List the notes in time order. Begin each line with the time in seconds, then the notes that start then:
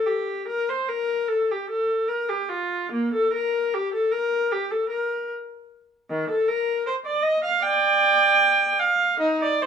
0.06 G4
0.48 A#4
0.69 C5
0.89 A#4
1.28 A4
1.51 G4
1.70 A4
2.08 A#4
2.29 G4
2.49 F4
2.92 A#3
3.14 A4
3.33 A#4
3.74 G4
3.94 A4
4.12 A#4
4.52 G4
4.71 A4
4.89 A#4
6.10 D#3
6.30 A4
6.48 A#4
6.87 C5
7.06 D5
7.23 D#5
7.45 F5
7.62 D5 G5
8.79 F5
9.20 D#4
9.42 D5
9.62 C5